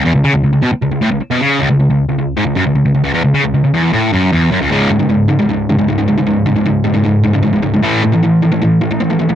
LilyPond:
\new Staff \with { instrumentName = "Distorted electric guitar" } { \clef bass \time 4/4 \key cis \minor \tempo 4 = 154 e,16 cis,16 cis16 cis,16 cis,16 cis,16 b,16 r16 cis,16 cis,16 a,16 cis,16 r16 b,16 cis8 | cis,16 cis,16 cis,16 cis,8 cis,16 cis,8 gis,16 cis,16 fis,16 cis,16 cis,16 cis,16 cis,16 cis,16 | e,16 cis,16 cis16 cis,16 cis,16 cis,16 e,8 a,8 fis,8 e,8 fis,16 cis,16 | <cis, gis, cis>8 <cis, gis,>16 <cis, gis,>16 <cis, gis,>8 <cis, gis,>16 <cis, gis,>16 <cis, gis,>8 <cis, gis,>16 <cis, gis,>16 <cis, gis,>16 <cis, gis,>16 <cis, gis,>16 <cis, gis,>16 |
<cis, gis,>8 <cis, gis,>16 <cis, gis,>16 <cis, gis,>8 <cis, gis,>16 <cis, gis,>16 <cis, gis,>8 <cis, gis,>16 <cis, gis,>16 <cis, gis,>16 <cis, gis,>16 <cis, gis,>16 <cis, gis,>16 | <a, e a>8 <a, e>16 <a, e>16 <a, e>8 <a, e>16 <a, e>16 <a, e>8 <a, e>16 <a, e>16 <a, e>16 <a, e>16 <a, e>16 <a, e>16 | }